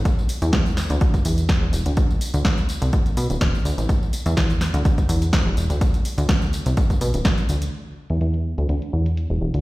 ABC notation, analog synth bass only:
X:1
M:4/4
L:1/16
Q:"Swing 16ths" 1/4=125
K:Dmix
V:1 name="Analog synth bass" clef=bass
z3 E,, E,,3 D,, D,, z E,,3 E,,, E,,, D,,- | D,,2 z D,, D,,3 C,, z2 B,, D,,, D,,, z D,, A,,, | z3 E,, E,,3 D,, D,, z E,,3 E,,, E,,, D,,- | D,,2 z D,, D,,3 C,, z2 B,, D,,, D,, z D,,2 |
z3 E,, E,,3 D,, D,, z E,,3 E,,, E,,, D,, |]